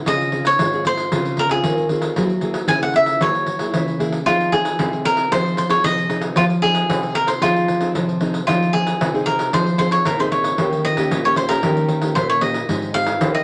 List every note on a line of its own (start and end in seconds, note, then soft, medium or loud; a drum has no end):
0.06 0.57 C#3 soft
0.06 0.29 C4 soft
0.06 0.29 F4 soft
0.06 0.29 G#4 medium
0.06 0.48 D#5 loud
0.06 pandeiro medium
0.21 pandeiro soft
0.32 0.48 C4 medium
0.32 0.48 F4 medium
0.32 0.49 G#4 medium
0.32 pandeiro soft
0.45 0.86 C#5 medium
0.45 pandeiro medium
0.59 1.09 G#2 medium
0.59 0.68 C4 medium
0.59 0.69 F4 soft
0.59 0.69 G#4 medium
0.59 pandeiro medium
0.73 1.08 C4 medium
0.73 1.08 F4 medium
0.73 1.08 G#4 medium
0.73 pandeiro soft
0.85 1.40 C5 medium
0.85 pandeiro medium
0.97 pandeiro medium
1.12 1.62 C#3 soft
1.12 1.47 C4 medium
1.12 1.47 F4 medium
1.12 1.47 G#4 soft
1.12 pandeiro medium
1.25 pandeiro soft
1.37 1.51 A#4 medium
1.37 pandeiro soft
1.49 1.85 C4 medium
1.49 1.86 F4 medium
1.49 1.86 G#4 medium
1.49 1.88 G#4 medium
1.49 pandeiro medium
1.64 2.14 G#2 medium
1.64 2.09 D#3 medium
1.64 pandeiro medium
1.78 pandeiro soft
1.89 2.15 C4 soft
1.89 2.15 F4 medium
1.89 2.15 G#4 medium
1.89 pandeiro soft
2.02 pandeiro medium
2.16 2.67 F#3 soft
2.16 2.32 A#3 soft
2.16 2.32 E4 soft
2.16 2.32 G#4 medium
2.16 pandeiro medium
2.30 pandeiro soft
2.41 2.58 A#3 soft
2.41 2.58 E4 medium
2.41 2.58 G#4 medium
2.41 pandeiro medium
2.54 pandeiro medium
2.68 3.19 C#3 medium
2.68 3.18 A#3 soft
2.68 3.18 E4 medium
2.68 3.18 G#4 medium
2.68 2.81 G#5 medium
2.68 pandeiro medium
2.82 2.95 F#5 medium
2.82 pandeiro soft
2.94 3.20 E5 medium
2.94 pandeiro soft
3.06 pandeiro medium
3.21 3.71 F#3 soft
3.21 3.46 A#3 medium
3.21 3.46 E4 soft
3.21 3.47 G#4 soft
3.21 3.97 C#5 medium
3.21 pandeiro medium
3.35 pandeiro soft
3.46 pandeiro medium
3.59 3.96 A#3 medium
3.59 3.96 E4 medium
3.59 3.96 G#4 medium
3.59 pandeiro medium
3.74 4.24 C#3 soft
3.74 4.19 E3 medium
3.74 pandeiro medium
3.88 pandeiro soft
3.99 4.17 A#3 medium
3.99 4.17 E4 medium
3.99 4.17 G#4 medium
3.99 pandeiro medium
4.12 pandeiro medium
4.26 4.77 F3 medium
4.26 4.49 C4 medium
4.26 4.49 D#4 soft
4.26 4.54 F4 medium
4.26 4.49 G#4 soft
4.26 pandeiro medium
4.40 pandeiro soft
4.52 4.75 C4 soft
4.52 4.75 D#4 soft
4.52 5.05 G#4 medium
4.52 4.75 G#4 medium
4.52 pandeiro medium
4.65 pandeiro medium
4.79 5.29 C3 medium
4.79 5.28 C4 soft
4.79 5.28 D#4 medium
4.79 5.28 G#4 medium
4.79 pandeiro medium
4.93 pandeiro soft
5.05 5.33 A#4 medium
5.05 pandeiro medium
5.17 pandeiro medium
5.31 5.82 F3 medium
5.31 5.67 C4 medium
5.31 5.67 D#4 medium
5.31 5.67 G#4 medium
5.31 5.56 C5 medium
5.31 pandeiro medium
5.46 pandeiro soft
5.57 5.70 C5 medium
5.57 pandeiro medium
5.69 6.06 C4 medium
5.69 6.06 D#4 medium
5.69 6.06 G#4 medium
5.69 5.83 C#5 medium
5.69 pandeiro medium
5.84 6.34 C3 soft
5.84 6.29 F3 medium
5.84 6.21 D#5 medium
5.84 pandeiro medium
5.98 pandeiro soft
6.09 6.44 C4 medium
6.09 6.44 D#4 medium
6.09 6.44 G#4 medium
6.09 pandeiro medium
6.21 pandeiro medium
6.36 6.87 F3 medium
6.36 6.44 F4 medium
6.36 pandeiro medium
6.50 pandeiro soft
6.62 6.85 C4 medium
6.62 6.86 D#4 medium
6.62 7.15 G#4 medium
6.62 6.86 G#4 medium
6.62 pandeiro soft
6.75 pandeiro medium
6.90 7.40 C3 soft
6.90 7.24 C4 medium
6.90 7.24 D#4 soft
6.90 7.24 G#4 medium
6.90 pandeiro medium
7.03 pandeiro soft
7.15 7.29 A#4 medium
7.15 pandeiro medium
7.27 7.41 C5 medium
7.27 pandeiro medium
7.42 7.93 F3 medium
7.42 7.78 C4 soft
7.42 7.78 D#4 medium
7.42 7.91 F4 medium
7.42 7.78 G#4 medium
7.42 pandeiro medium
7.56 pandeiro soft
7.68 pandeiro medium
7.81 8.17 C4 medium
7.81 8.17 D#4 medium
7.81 8.17 G#4 medium
7.81 pandeiro medium
7.95 8.45 C3 soft
7.95 8.40 F3 medium
7.95 pandeiro medium
8.09 pandeiro soft
8.21 8.38 C4 medium
8.21 8.39 D#4 soft
8.21 8.39 G#4 medium
8.21 pandeiro medium
8.34 pandeiro medium
8.47 8.98 F3 soft
8.47 8.70 C4 soft
8.47 8.70 D#4 soft
8.47 8.72 F4 medium
8.47 8.70 G#4 soft
8.47 pandeiro medium
8.62 pandeiro soft
8.73 9.09 C4 soft
8.73 9.09 D#4 medium
8.73 9.22 G#4 medium
8.73 9.10 G#4 medium
8.73 pandeiro medium
8.87 pandeiro medium
9.00 9.50 C3 medium
9.00 pandeiro medium
9.14 9.49 C4 medium
9.14 9.49 D#4 medium
9.14 9.50 G#4 medium
9.14 pandeiro soft
9.26 9.51 A#4 medium
9.26 pandeiro medium
9.39 pandeiro medium
9.53 10.03 F3 soft
9.53 9.69 C4 medium
9.53 9.69 D#4 medium
9.53 9.69 G#4 soft
9.53 9.78 C5 medium
9.53 pandeiro medium
9.67 pandeiro soft
9.78 10.04 C4 medium
9.78 10.04 D#4 soft
9.78 10.04 G#4 medium
9.78 9.92 C5 medium
9.78 pandeiro medium
9.91 10.06 C#5 medium
9.91 pandeiro medium
10.05 10.51 A#2 medium
10.05 10.56 C3 soft
10.05 10.18 A#4 medium
10.05 pandeiro medium
10.19 10.55 C4 medium
10.19 10.55 D#4 medium
10.19 10.55 G#4 medium
10.19 10.25 C5 medium
10.19 pandeiro soft
10.32 10.81 C#5 medium
10.32 pandeiro soft
10.44 pandeiro medium
10.58 11.09 D#3 soft
10.58 10.94 A#3 medium
10.58 10.94 C#4 medium
10.58 10.94 G4 medium
10.58 pandeiro medium
10.73 pandeiro soft
10.85 11.25 D#5 medium
10.85 pandeiro medium
10.97 11.20 A#3 medium
10.97 11.20 C#4 medium
10.97 11.20 G4 medium
10.97 pandeiro medium
11.11 11.61 A#2 soft
11.11 pandeiro medium
11.25 11.47 A#3 medium
11.25 11.47 C#4 medium
11.25 11.47 G4 medium
11.25 11.37 C#5 medium
11.25 pandeiro soft
11.36 11.50 C5 medium
11.36 pandeiro medium
11.49 11.59 A#3 medium
11.49 11.59 C#4 soft
11.49 11.59 G4 medium
11.49 12.17 A#4 medium
11.49 pandeiro medium
11.63 12.14 D#3 medium
11.63 11.99 A#3 medium
11.63 11.99 C#4 soft
11.63 12.00 G4 medium
11.63 pandeiro medium
11.77 pandeiro soft
11.88 pandeiro medium
12.02 12.38 A#3 medium
12.02 12.39 C#4 medium
12.02 12.39 G4 medium
12.02 pandeiro medium
12.15 12.67 A#2 medium
12.15 12.29 C5 medium
12.15 pandeiro medium
12.30 12.42 C#5 medium
12.30 pandeiro soft
12.41 12.58 A#3 soft
12.41 12.58 C#4 soft
12.41 12.58 G4 medium
12.41 12.94 D#5 medium
12.41 pandeiro medium
12.54 pandeiro medium
12.69 13.14 G#2 loud
12.69 13.19 G#3 medium
12.69 12.91 C4 soft
12.69 12.91 D#4 soft
12.69 12.91 G4 medium
12.69 pandeiro medium
12.82 pandeiro soft
12.94 13.17 C4 soft
12.94 13.17 D#4 medium
12.94 13.17 G4 medium
12.94 13.31 F5 medium
12.94 pandeiro soft
13.07 pandeiro medium
13.21 13.44 D#3 medium
13.21 13.44 C4 medium
13.21 13.44 D#4 medium
13.21 13.44 G4 medium
13.21 pandeiro medium
13.34 13.42 D#5 medium
13.34 pandeiro soft